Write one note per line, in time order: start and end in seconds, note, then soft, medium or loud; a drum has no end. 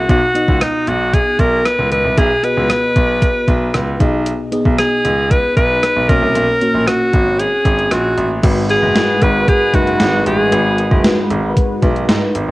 0.00 0.11 A#3 medium
0.00 0.11 C#4 medium
0.00 0.09 F#4 medium
0.00 0.10 C#5 medium
0.09 0.19 B1 medium
0.09 0.83 B2 medium
0.09 0.24 B3 medium
0.09 0.25 D#4 medium
0.09 0.25 F#4 medium
0.09 0.64 F#4 loud
0.09 0.25 D#5 medium
0.09 kick loud
0.09 closed hi-hat medium
0.34 0.97 B3 medium
0.34 0.98 D#4 medium
0.34 0.98 F#4 medium
0.34 0.98 D#5 medium
0.34 closed hi-hat medium
0.48 0.58 C#2 medium
0.48 kick medium
0.61 0.90 D#4 medium
0.61 cross-stick loud
0.61 closed hi-hat medium
0.87 1.17 B1 medium
0.87 1.15 F#4 medium
0.87 closed hi-hat medium
1.13 1.41 G#4 medium
1.13 kick medium
1.13 closed hi-hat medium
1.39 1.59 B1 medium
1.39 1.67 A#4 medium
1.39 kick medium
1.39 closed hi-hat medium
1.66 1.91 B4 medium
1.66 cross-stick loud
1.66 closed hi-hat medium
1.79 1.88 C#2 medium
1.92 2.01 C#2 medium
1.92 2.20 B4 medium
1.92 closed hi-hat medium
2.05 2.14 C2 medium
2.17 2.27 B1 loud
2.17 2.92 B2 medium
2.17 2.33 B3 medium
2.17 2.33 F#4 medium
2.17 2.33 G#4 medium
2.17 2.46 G#4 medium
2.17 2.33 E5 medium
2.17 kick loud
2.17 closed hi-hat medium
2.43 3.06 B3 medium
2.43 3.06 F#4 medium
2.43 3.07 G#4 medium
2.43 4.00 B4 medium
2.43 3.07 D#5 medium
2.43 closed hi-hat medium
2.57 2.67 C#2 medium
2.70 cross-stick loud
2.70 closed hi-hat medium
2.96 3.25 B1 medium
2.96 kick medium
2.96 closed hi-hat medium
3.22 kick medium
3.22 closed hi-hat medium
3.48 3.68 B1 medium
3.48 kick medium
3.48 closed hi-hat medium
3.74 3.94 C#2 medium
3.74 cross-stick loud
3.74 closed hi-hat medium
4.00 4.30 B1 medium
4.00 4.75 B2 medium
4.00 4.42 B3 medium
4.00 4.42 D#4 medium
4.00 4.42 G#4 medium
4.00 4.42 D#5 medium
4.00 kick medium
4.00 closed hi-hat medium
4.26 closed hi-hat medium
4.52 5.15 B3 medium
4.52 5.15 D#4 medium
4.52 5.15 G#4 medium
4.52 5.15 D#5 medium
4.52 closed hi-hat medium
4.65 4.75 B1 medium
4.65 kick medium
4.79 5.32 G#4 medium
4.79 cross-stick loud
4.79 closed hi-hat medium
5.05 5.34 C#2 medium
5.05 closed hi-hat medium
5.31 5.56 B4 loud
5.31 kick medium
5.31 closed hi-hat medium
5.56 5.76 B1 medium
5.56 6.10 B4 loud
5.56 kick medium
5.56 closed hi-hat medium
5.83 cross-stick loud
5.83 closed hi-hat medium
5.96 6.06 B1 medium
6.09 6.19 B1 medium
6.09 6.83 B2 medium
6.09 6.51 A#3 medium
6.09 6.51 C#4 medium
6.09 6.51 F#4 medium
6.09 6.88 A#4 loud
6.09 6.51 C#5 medium
6.09 kick loud
6.09 closed hi-hat medium
6.22 6.32 C2 medium
6.35 6.45 B1 loud
6.35 closed hi-hat medium
6.61 7.24 A#3 medium
6.61 7.24 C#4 medium
6.61 7.24 F#4 medium
6.61 7.24 C#5 medium
6.61 closed hi-hat medium
6.74 6.84 A#1 medium
6.87 7.41 F#4 medium
6.87 cross-stick loud
6.87 closed hi-hat medium
7.13 7.43 G#1 medium
7.13 kick medium
7.13 closed hi-hat medium
7.39 7.93 G#4 medium
7.39 closed hi-hat medium
7.65 7.85 G#1 medium
7.65 kick medium
7.65 closed hi-hat medium
7.79 closed hi-hat soft
7.91 8.11 A#1 medium
7.91 8.31 F#4 medium
7.91 cross-stick medium
7.91 closed hi-hat medium
8.18 8.37 A1 medium
8.18 closed hi-hat medium
8.43 8.73 G#1 loud
8.43 9.18 G#2 medium
8.43 8.75 G#3 medium
8.43 12.51 G#3 medium
8.43 12.31 G#3 medium
8.43 8.75 D#4 medium
8.43 12.51 D#4 medium
8.43 8.75 F#4 medium
8.43 12.51 F#4 medium
8.43 12.31 F#4 medium
8.43 12.51 B4 medium
8.43 12.31 B4 medium
8.43 8.75 B4 medium
8.43 kick loud
8.43 closed hi-hat medium
8.43 crash medium
8.70 9.24 G#4 medium
8.70 closed hi-hat medium
8.83 8.93 F#1 medium
8.95 9.43 G#3 medium
8.95 9.43 D#4 medium
8.95 9.43 F#4 medium
8.95 9.03 A#4 medium
8.95 snare loud
8.95 closed hi-hat medium
9.03 9.46 B4 medium
9.22 9.42 G#1 medium
9.22 9.50 B4 loud
9.22 kick medium
9.22 closed hi-hat medium
9.48 9.77 G#4 loud
9.48 kick loud
9.48 closed hi-hat medium
9.74 9.94 F#1 medium
9.74 10.21 G#3 medium
9.74 10.21 D#4 medium
9.74 10.21 F#4 medium
9.74 10.26 F#4 medium
9.74 10.22 B4 medium
9.74 kick medium
9.74 closed hi-hat medium
9.87 closed hi-hat soft
10.00 10.20 G#1 medium
10.00 snare loud
10.00 closed hi-hat medium
10.26 10.46 A1 medium
10.26 11.01 G#4 medium
10.26 closed hi-hat medium
10.51 10.82 G#1 loud
10.51 11.26 G#2 medium
10.51 10.83 G#3 medium
10.51 10.83 D#4 medium
10.51 10.84 F#4 medium
10.51 10.84 B4 medium
10.51 closed hi-hat medium
10.78 closed hi-hat medium
10.91 11.01 F#1 medium
10.91 kick medium
11.03 11.51 G#3 medium
11.03 11.51 D#4 medium
11.03 11.51 F#4 medium
11.03 11.52 B4 medium
11.03 snare loud
11.03 closed hi-hat medium
11.30 11.50 G#1 medium
11.30 closed hi-hat medium
11.57 kick loud
11.57 closed hi-hat medium
11.82 12.02 B1 medium
11.82 12.29 G#3 medium
11.82 12.29 D#4 medium
11.82 12.30 F#4 medium
11.82 12.30 B4 medium
11.82 kick medium
11.82 closed hi-hat medium
11.96 closed hi-hat soft
12.09 12.19 G#2 loud
12.09 snare loud
12.09 closed hi-hat medium
12.35 12.45 G#1 medium
12.35 closed hi-hat medium